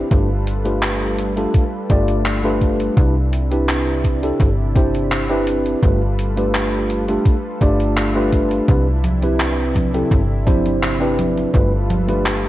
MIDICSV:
0, 0, Header, 1, 5, 480
1, 0, Start_track
1, 0, Key_signature, 0, "major"
1, 0, Tempo, 714286
1, 77, Time_signature, 4, 2, 24, 8
1, 8392, End_track
2, 0, Start_track
2, 0, Title_t, "Tine electric piano"
2, 0, Program_c, 0, 4
2, 70, Note_on_c, 0, 57, 74
2, 73, Note_on_c, 0, 62, 65
2, 76, Note_on_c, 0, 65, 61
2, 78, Note_on_c, 0, 67, 62
2, 82, Note_on_c, 0, 71, 78
2, 187, Note_off_c, 0, 57, 0
2, 188, Note_off_c, 0, 62, 0
2, 190, Note_off_c, 0, 65, 0
2, 191, Note_off_c, 0, 67, 0
2, 193, Note_off_c, 0, 71, 0
2, 434, Note_on_c, 0, 57, 75
2, 437, Note_on_c, 0, 62, 70
2, 440, Note_on_c, 0, 65, 68
2, 441, Note_on_c, 0, 67, 68
2, 444, Note_on_c, 0, 71, 87
2, 888, Note_off_c, 0, 57, 0
2, 890, Note_off_c, 0, 62, 0
2, 891, Note_off_c, 0, 65, 0
2, 892, Note_off_c, 0, 67, 0
2, 893, Note_off_c, 0, 71, 0
2, 916, Note_on_c, 0, 57, 78
2, 918, Note_on_c, 0, 62, 76
2, 921, Note_on_c, 0, 65, 71
2, 923, Note_on_c, 0, 67, 74
2, 925, Note_on_c, 0, 69, 89
2, 1092, Note_off_c, 0, 57, 0
2, 1093, Note_off_c, 0, 62, 0
2, 1094, Note_off_c, 0, 65, 0
2, 1095, Note_off_c, 0, 67, 0
2, 1096, Note_off_c, 0, 69, 0
2, 1276, Note_on_c, 0, 57, 95
2, 1278, Note_on_c, 0, 62, 86
2, 1280, Note_on_c, 0, 65, 89
2, 1283, Note_on_c, 0, 67, 87
2, 1286, Note_on_c, 0, 74, 101
2, 1611, Note_off_c, 0, 57, 0
2, 1612, Note_off_c, 0, 62, 0
2, 1613, Note_off_c, 0, 65, 0
2, 1614, Note_off_c, 0, 67, 0
2, 1616, Note_off_c, 0, 74, 0
2, 1639, Note_on_c, 0, 57, 96
2, 1640, Note_on_c, 0, 62, 86
2, 1643, Note_on_c, 0, 65, 88
2, 1646, Note_on_c, 0, 67, 91
2, 1648, Note_on_c, 0, 71, 106
2, 1968, Note_off_c, 0, 57, 0
2, 1969, Note_off_c, 0, 62, 0
2, 1970, Note_off_c, 0, 65, 0
2, 1972, Note_off_c, 0, 67, 0
2, 1973, Note_off_c, 0, 71, 0
2, 1995, Note_on_c, 0, 60, 69
2, 1999, Note_on_c, 0, 62, 66
2, 2001, Note_on_c, 0, 64, 67
2, 2003, Note_on_c, 0, 67, 68
2, 2006, Note_on_c, 0, 71, 81
2, 2109, Note_off_c, 0, 60, 0
2, 2111, Note_off_c, 0, 62, 0
2, 2112, Note_off_c, 0, 64, 0
2, 2113, Note_off_c, 0, 67, 0
2, 2115, Note_off_c, 0, 71, 0
2, 2357, Note_on_c, 0, 60, 78
2, 2361, Note_on_c, 0, 62, 73
2, 2364, Note_on_c, 0, 64, 68
2, 2366, Note_on_c, 0, 67, 74
2, 2368, Note_on_c, 0, 71, 84
2, 2810, Note_off_c, 0, 60, 0
2, 2811, Note_off_c, 0, 62, 0
2, 2813, Note_off_c, 0, 64, 0
2, 2814, Note_off_c, 0, 67, 0
2, 2815, Note_off_c, 0, 71, 0
2, 2837, Note_on_c, 0, 60, 78
2, 2840, Note_on_c, 0, 62, 72
2, 2843, Note_on_c, 0, 64, 73
2, 2845, Note_on_c, 0, 67, 73
2, 2849, Note_on_c, 0, 69, 86
2, 3012, Note_off_c, 0, 60, 0
2, 3014, Note_off_c, 0, 62, 0
2, 3015, Note_off_c, 0, 64, 0
2, 3016, Note_off_c, 0, 67, 0
2, 3018, Note_off_c, 0, 69, 0
2, 3193, Note_on_c, 0, 60, 95
2, 3196, Note_on_c, 0, 62, 85
2, 3198, Note_on_c, 0, 64, 88
2, 3201, Note_on_c, 0, 67, 88
2, 3203, Note_on_c, 0, 72, 104
2, 3529, Note_off_c, 0, 60, 0
2, 3531, Note_off_c, 0, 62, 0
2, 3532, Note_off_c, 0, 64, 0
2, 3533, Note_off_c, 0, 67, 0
2, 3535, Note_off_c, 0, 72, 0
2, 3555, Note_on_c, 0, 60, 97
2, 3559, Note_on_c, 0, 62, 87
2, 3562, Note_on_c, 0, 64, 86
2, 3563, Note_on_c, 0, 67, 86
2, 3565, Note_on_c, 0, 71, 106
2, 3886, Note_off_c, 0, 60, 0
2, 3888, Note_off_c, 0, 62, 0
2, 3890, Note_off_c, 0, 64, 0
2, 3890, Note_off_c, 0, 67, 0
2, 3891, Note_off_c, 0, 71, 0
2, 3912, Note_on_c, 0, 57, 75
2, 3915, Note_on_c, 0, 62, 66
2, 3917, Note_on_c, 0, 65, 64
2, 3920, Note_on_c, 0, 67, 67
2, 3922, Note_on_c, 0, 71, 75
2, 4028, Note_off_c, 0, 57, 0
2, 4030, Note_off_c, 0, 62, 0
2, 4031, Note_off_c, 0, 65, 0
2, 4032, Note_off_c, 0, 67, 0
2, 4033, Note_off_c, 0, 71, 0
2, 4275, Note_on_c, 0, 57, 78
2, 4278, Note_on_c, 0, 62, 71
2, 4280, Note_on_c, 0, 65, 68
2, 4283, Note_on_c, 0, 67, 69
2, 4286, Note_on_c, 0, 71, 83
2, 4729, Note_off_c, 0, 57, 0
2, 4730, Note_off_c, 0, 62, 0
2, 4731, Note_off_c, 0, 65, 0
2, 4732, Note_off_c, 0, 67, 0
2, 4734, Note_off_c, 0, 71, 0
2, 4760, Note_on_c, 0, 57, 81
2, 4762, Note_on_c, 0, 62, 70
2, 4764, Note_on_c, 0, 65, 70
2, 4766, Note_on_c, 0, 67, 73
2, 4770, Note_on_c, 0, 69, 85
2, 4934, Note_off_c, 0, 57, 0
2, 4934, Note_off_c, 0, 62, 0
2, 4936, Note_off_c, 0, 65, 0
2, 4937, Note_off_c, 0, 67, 0
2, 4939, Note_off_c, 0, 69, 0
2, 5112, Note_on_c, 0, 57, 92
2, 5115, Note_on_c, 0, 62, 86
2, 5118, Note_on_c, 0, 65, 91
2, 5120, Note_on_c, 0, 67, 87
2, 5122, Note_on_c, 0, 74, 104
2, 5449, Note_off_c, 0, 57, 0
2, 5450, Note_off_c, 0, 62, 0
2, 5452, Note_off_c, 0, 65, 0
2, 5453, Note_off_c, 0, 67, 0
2, 5454, Note_off_c, 0, 74, 0
2, 5475, Note_on_c, 0, 57, 92
2, 5478, Note_on_c, 0, 62, 85
2, 5480, Note_on_c, 0, 65, 90
2, 5483, Note_on_c, 0, 67, 84
2, 5485, Note_on_c, 0, 71, 106
2, 5806, Note_off_c, 0, 57, 0
2, 5808, Note_off_c, 0, 62, 0
2, 5809, Note_off_c, 0, 65, 0
2, 5810, Note_off_c, 0, 67, 0
2, 5811, Note_off_c, 0, 71, 0
2, 5831, Note_on_c, 0, 60, 72
2, 5835, Note_on_c, 0, 62, 67
2, 5837, Note_on_c, 0, 64, 63
2, 5841, Note_on_c, 0, 67, 66
2, 5842, Note_on_c, 0, 71, 80
2, 5948, Note_off_c, 0, 60, 0
2, 5950, Note_off_c, 0, 62, 0
2, 5951, Note_off_c, 0, 64, 0
2, 5952, Note_off_c, 0, 67, 0
2, 5953, Note_off_c, 0, 71, 0
2, 6195, Note_on_c, 0, 60, 76
2, 6198, Note_on_c, 0, 62, 69
2, 6203, Note_on_c, 0, 64, 66
2, 6205, Note_on_c, 0, 67, 68
2, 6206, Note_on_c, 0, 71, 85
2, 6648, Note_off_c, 0, 60, 0
2, 6650, Note_off_c, 0, 62, 0
2, 6652, Note_off_c, 0, 64, 0
2, 6653, Note_off_c, 0, 67, 0
2, 6654, Note_off_c, 0, 71, 0
2, 6677, Note_on_c, 0, 60, 80
2, 6679, Note_on_c, 0, 62, 72
2, 6681, Note_on_c, 0, 64, 73
2, 6684, Note_on_c, 0, 67, 71
2, 6685, Note_on_c, 0, 69, 88
2, 6852, Note_off_c, 0, 60, 0
2, 6853, Note_off_c, 0, 62, 0
2, 6854, Note_off_c, 0, 64, 0
2, 6856, Note_off_c, 0, 67, 0
2, 6856, Note_off_c, 0, 69, 0
2, 7031, Note_on_c, 0, 60, 92
2, 7031, Note_on_c, 0, 62, 90
2, 7035, Note_on_c, 0, 64, 90
2, 7038, Note_on_c, 0, 67, 87
2, 7040, Note_on_c, 0, 72, 103
2, 7368, Note_off_c, 0, 60, 0
2, 7369, Note_off_c, 0, 62, 0
2, 7371, Note_off_c, 0, 64, 0
2, 7372, Note_off_c, 0, 67, 0
2, 7373, Note_off_c, 0, 72, 0
2, 7392, Note_on_c, 0, 60, 97
2, 7394, Note_on_c, 0, 62, 86
2, 7398, Note_on_c, 0, 64, 85
2, 7400, Note_on_c, 0, 67, 84
2, 7403, Note_on_c, 0, 71, 103
2, 7725, Note_off_c, 0, 60, 0
2, 7726, Note_off_c, 0, 62, 0
2, 7728, Note_off_c, 0, 64, 0
2, 7729, Note_off_c, 0, 67, 0
2, 7730, Note_off_c, 0, 71, 0
2, 7748, Note_on_c, 0, 57, 68
2, 7750, Note_on_c, 0, 62, 68
2, 7754, Note_on_c, 0, 65, 69
2, 7756, Note_on_c, 0, 67, 66
2, 7758, Note_on_c, 0, 71, 81
2, 7866, Note_off_c, 0, 57, 0
2, 7867, Note_off_c, 0, 62, 0
2, 7869, Note_off_c, 0, 65, 0
2, 7870, Note_off_c, 0, 67, 0
2, 7871, Note_off_c, 0, 71, 0
2, 8113, Note_on_c, 0, 57, 77
2, 8116, Note_on_c, 0, 62, 70
2, 8119, Note_on_c, 0, 65, 73
2, 8120, Note_on_c, 0, 67, 69
2, 8122, Note_on_c, 0, 71, 86
2, 8392, Note_off_c, 0, 57, 0
2, 8392, Note_off_c, 0, 62, 0
2, 8392, Note_off_c, 0, 65, 0
2, 8392, Note_off_c, 0, 67, 0
2, 8392, Note_off_c, 0, 71, 0
2, 8392, End_track
3, 0, Start_track
3, 0, Title_t, "Analog synth pad"
3, 0, Program_c, 1, 89
3, 76, Note_on_c, 1, 55, 75
3, 78, Note_on_c, 1, 65, 71
3, 78, Note_on_c, 1, 69, 68
3, 79, Note_on_c, 1, 71, 85
3, 1977, Note_off_c, 1, 55, 0
3, 1978, Note_off_c, 1, 65, 0
3, 1978, Note_off_c, 1, 69, 0
3, 1979, Note_off_c, 1, 71, 0
3, 1993, Note_on_c, 1, 48, 74
3, 1995, Note_on_c, 1, 64, 87
3, 1997, Note_on_c, 1, 62, 70
3, 3896, Note_off_c, 1, 48, 0
3, 3897, Note_off_c, 1, 64, 0
3, 3898, Note_off_c, 1, 62, 0
3, 3914, Note_on_c, 1, 55, 76
3, 3916, Note_on_c, 1, 69, 68
3, 3916, Note_on_c, 1, 71, 81
3, 3918, Note_on_c, 1, 65, 71
3, 5816, Note_off_c, 1, 55, 0
3, 5817, Note_off_c, 1, 69, 0
3, 5817, Note_off_c, 1, 71, 0
3, 5818, Note_off_c, 1, 65, 0
3, 5837, Note_on_c, 1, 62, 69
3, 5837, Note_on_c, 1, 64, 85
3, 5838, Note_on_c, 1, 48, 73
3, 7738, Note_off_c, 1, 48, 0
3, 7738, Note_off_c, 1, 62, 0
3, 7738, Note_off_c, 1, 64, 0
3, 7760, Note_on_c, 1, 69, 67
3, 7761, Note_on_c, 1, 55, 77
3, 7761, Note_on_c, 1, 65, 68
3, 7762, Note_on_c, 1, 71, 79
3, 8392, Note_off_c, 1, 55, 0
3, 8392, Note_off_c, 1, 65, 0
3, 8392, Note_off_c, 1, 69, 0
3, 8392, Note_off_c, 1, 71, 0
3, 8392, End_track
4, 0, Start_track
4, 0, Title_t, "FM bass"
4, 0, Program_c, 2, 39
4, 75, Note_on_c, 2, 31, 97
4, 985, Note_off_c, 2, 31, 0
4, 1276, Note_on_c, 2, 31, 87
4, 1946, Note_off_c, 2, 31, 0
4, 1996, Note_on_c, 2, 36, 95
4, 2905, Note_off_c, 2, 36, 0
4, 2956, Note_on_c, 2, 31, 92
4, 3865, Note_off_c, 2, 31, 0
4, 3914, Note_on_c, 2, 31, 101
4, 4825, Note_off_c, 2, 31, 0
4, 5114, Note_on_c, 2, 31, 87
4, 5785, Note_off_c, 2, 31, 0
4, 5836, Note_on_c, 2, 36, 98
4, 6745, Note_off_c, 2, 36, 0
4, 6794, Note_on_c, 2, 31, 94
4, 7705, Note_off_c, 2, 31, 0
4, 7755, Note_on_c, 2, 31, 97
4, 8392, Note_off_c, 2, 31, 0
4, 8392, End_track
5, 0, Start_track
5, 0, Title_t, "Drums"
5, 75, Note_on_c, 9, 36, 126
5, 75, Note_on_c, 9, 42, 76
5, 142, Note_off_c, 9, 36, 0
5, 142, Note_off_c, 9, 42, 0
5, 317, Note_on_c, 9, 42, 81
5, 384, Note_off_c, 9, 42, 0
5, 440, Note_on_c, 9, 42, 53
5, 507, Note_off_c, 9, 42, 0
5, 555, Note_on_c, 9, 39, 120
5, 555, Note_on_c, 9, 42, 75
5, 622, Note_off_c, 9, 39, 0
5, 622, Note_off_c, 9, 42, 0
5, 796, Note_on_c, 9, 42, 79
5, 864, Note_off_c, 9, 42, 0
5, 921, Note_on_c, 9, 42, 56
5, 988, Note_off_c, 9, 42, 0
5, 1036, Note_on_c, 9, 36, 114
5, 1036, Note_on_c, 9, 42, 83
5, 1103, Note_off_c, 9, 42, 0
5, 1104, Note_off_c, 9, 36, 0
5, 1276, Note_on_c, 9, 42, 80
5, 1277, Note_on_c, 9, 36, 102
5, 1343, Note_off_c, 9, 42, 0
5, 1344, Note_off_c, 9, 36, 0
5, 1399, Note_on_c, 9, 42, 55
5, 1467, Note_off_c, 9, 42, 0
5, 1516, Note_on_c, 9, 39, 119
5, 1516, Note_on_c, 9, 42, 80
5, 1583, Note_off_c, 9, 39, 0
5, 1583, Note_off_c, 9, 42, 0
5, 1756, Note_on_c, 9, 36, 61
5, 1758, Note_on_c, 9, 42, 83
5, 1824, Note_off_c, 9, 36, 0
5, 1825, Note_off_c, 9, 42, 0
5, 1882, Note_on_c, 9, 42, 51
5, 1949, Note_off_c, 9, 42, 0
5, 1997, Note_on_c, 9, 36, 126
5, 1997, Note_on_c, 9, 42, 78
5, 2064, Note_off_c, 9, 36, 0
5, 2064, Note_off_c, 9, 42, 0
5, 2238, Note_on_c, 9, 42, 79
5, 2305, Note_off_c, 9, 42, 0
5, 2362, Note_on_c, 9, 42, 52
5, 2429, Note_off_c, 9, 42, 0
5, 2478, Note_on_c, 9, 39, 112
5, 2478, Note_on_c, 9, 42, 74
5, 2545, Note_off_c, 9, 39, 0
5, 2545, Note_off_c, 9, 42, 0
5, 2716, Note_on_c, 9, 36, 63
5, 2719, Note_on_c, 9, 42, 80
5, 2783, Note_off_c, 9, 36, 0
5, 2786, Note_off_c, 9, 42, 0
5, 2843, Note_on_c, 9, 42, 53
5, 2910, Note_off_c, 9, 42, 0
5, 2956, Note_on_c, 9, 36, 123
5, 2960, Note_on_c, 9, 42, 77
5, 3023, Note_off_c, 9, 36, 0
5, 3027, Note_off_c, 9, 42, 0
5, 3196, Note_on_c, 9, 36, 107
5, 3199, Note_on_c, 9, 42, 77
5, 3263, Note_off_c, 9, 36, 0
5, 3266, Note_off_c, 9, 42, 0
5, 3324, Note_on_c, 9, 42, 54
5, 3391, Note_off_c, 9, 42, 0
5, 3438, Note_on_c, 9, 39, 123
5, 3438, Note_on_c, 9, 42, 78
5, 3505, Note_off_c, 9, 39, 0
5, 3505, Note_off_c, 9, 42, 0
5, 3675, Note_on_c, 9, 42, 84
5, 3742, Note_off_c, 9, 42, 0
5, 3801, Note_on_c, 9, 42, 50
5, 3868, Note_off_c, 9, 42, 0
5, 3915, Note_on_c, 9, 36, 122
5, 3918, Note_on_c, 9, 42, 73
5, 3982, Note_off_c, 9, 36, 0
5, 3985, Note_off_c, 9, 42, 0
5, 4158, Note_on_c, 9, 42, 78
5, 4225, Note_off_c, 9, 42, 0
5, 4282, Note_on_c, 9, 42, 51
5, 4349, Note_off_c, 9, 42, 0
5, 4398, Note_on_c, 9, 39, 107
5, 4398, Note_on_c, 9, 42, 71
5, 4465, Note_off_c, 9, 39, 0
5, 4465, Note_off_c, 9, 42, 0
5, 4636, Note_on_c, 9, 42, 75
5, 4703, Note_off_c, 9, 42, 0
5, 4761, Note_on_c, 9, 42, 51
5, 4828, Note_off_c, 9, 42, 0
5, 4875, Note_on_c, 9, 36, 119
5, 4877, Note_on_c, 9, 42, 77
5, 4942, Note_off_c, 9, 36, 0
5, 4944, Note_off_c, 9, 42, 0
5, 5115, Note_on_c, 9, 36, 100
5, 5118, Note_on_c, 9, 42, 74
5, 5182, Note_off_c, 9, 36, 0
5, 5185, Note_off_c, 9, 42, 0
5, 5242, Note_on_c, 9, 42, 48
5, 5309, Note_off_c, 9, 42, 0
5, 5358, Note_on_c, 9, 39, 115
5, 5358, Note_on_c, 9, 42, 75
5, 5425, Note_off_c, 9, 39, 0
5, 5425, Note_off_c, 9, 42, 0
5, 5595, Note_on_c, 9, 36, 60
5, 5595, Note_on_c, 9, 42, 79
5, 5662, Note_off_c, 9, 36, 0
5, 5662, Note_off_c, 9, 42, 0
5, 5720, Note_on_c, 9, 42, 48
5, 5787, Note_off_c, 9, 42, 0
5, 5835, Note_on_c, 9, 42, 69
5, 5835, Note_on_c, 9, 63, 25
5, 5836, Note_on_c, 9, 36, 124
5, 5903, Note_off_c, 9, 36, 0
5, 5903, Note_off_c, 9, 42, 0
5, 5903, Note_off_c, 9, 63, 0
5, 6075, Note_on_c, 9, 42, 77
5, 6075, Note_on_c, 9, 63, 58
5, 6142, Note_off_c, 9, 42, 0
5, 6142, Note_off_c, 9, 63, 0
5, 6199, Note_on_c, 9, 42, 47
5, 6199, Note_on_c, 9, 63, 33
5, 6267, Note_off_c, 9, 42, 0
5, 6267, Note_off_c, 9, 63, 0
5, 6317, Note_on_c, 9, 39, 113
5, 6317, Note_on_c, 9, 42, 71
5, 6384, Note_off_c, 9, 39, 0
5, 6384, Note_off_c, 9, 42, 0
5, 6555, Note_on_c, 9, 36, 58
5, 6557, Note_on_c, 9, 42, 72
5, 6557, Note_on_c, 9, 63, 59
5, 6622, Note_off_c, 9, 36, 0
5, 6625, Note_off_c, 9, 42, 0
5, 6625, Note_off_c, 9, 63, 0
5, 6681, Note_on_c, 9, 42, 49
5, 6681, Note_on_c, 9, 63, 36
5, 6749, Note_off_c, 9, 42, 0
5, 6749, Note_off_c, 9, 63, 0
5, 6795, Note_on_c, 9, 36, 109
5, 6799, Note_on_c, 9, 42, 72
5, 6799, Note_on_c, 9, 63, 26
5, 6862, Note_off_c, 9, 36, 0
5, 6866, Note_off_c, 9, 42, 0
5, 6866, Note_off_c, 9, 63, 0
5, 7035, Note_on_c, 9, 36, 99
5, 7038, Note_on_c, 9, 42, 75
5, 7038, Note_on_c, 9, 63, 60
5, 7102, Note_off_c, 9, 36, 0
5, 7105, Note_off_c, 9, 42, 0
5, 7105, Note_off_c, 9, 63, 0
5, 7162, Note_on_c, 9, 42, 49
5, 7162, Note_on_c, 9, 63, 35
5, 7229, Note_off_c, 9, 42, 0
5, 7229, Note_off_c, 9, 63, 0
5, 7278, Note_on_c, 9, 39, 115
5, 7278, Note_on_c, 9, 42, 76
5, 7278, Note_on_c, 9, 63, 26
5, 7346, Note_off_c, 9, 39, 0
5, 7346, Note_off_c, 9, 42, 0
5, 7346, Note_off_c, 9, 63, 0
5, 7518, Note_on_c, 9, 42, 78
5, 7518, Note_on_c, 9, 63, 63
5, 7586, Note_off_c, 9, 42, 0
5, 7586, Note_off_c, 9, 63, 0
5, 7644, Note_on_c, 9, 42, 47
5, 7644, Note_on_c, 9, 63, 33
5, 7711, Note_off_c, 9, 42, 0
5, 7711, Note_off_c, 9, 63, 0
5, 7754, Note_on_c, 9, 36, 120
5, 7758, Note_on_c, 9, 42, 70
5, 7758, Note_on_c, 9, 63, 25
5, 7822, Note_off_c, 9, 36, 0
5, 7826, Note_off_c, 9, 42, 0
5, 7826, Note_off_c, 9, 63, 0
5, 7997, Note_on_c, 9, 42, 77
5, 7997, Note_on_c, 9, 63, 65
5, 8065, Note_off_c, 9, 42, 0
5, 8065, Note_off_c, 9, 63, 0
5, 8121, Note_on_c, 9, 42, 47
5, 8121, Note_on_c, 9, 63, 33
5, 8188, Note_off_c, 9, 42, 0
5, 8188, Note_off_c, 9, 63, 0
5, 8237, Note_on_c, 9, 39, 104
5, 8237, Note_on_c, 9, 42, 69
5, 8237, Note_on_c, 9, 63, 26
5, 8305, Note_off_c, 9, 39, 0
5, 8305, Note_off_c, 9, 42, 0
5, 8305, Note_off_c, 9, 63, 0
5, 8392, End_track
0, 0, End_of_file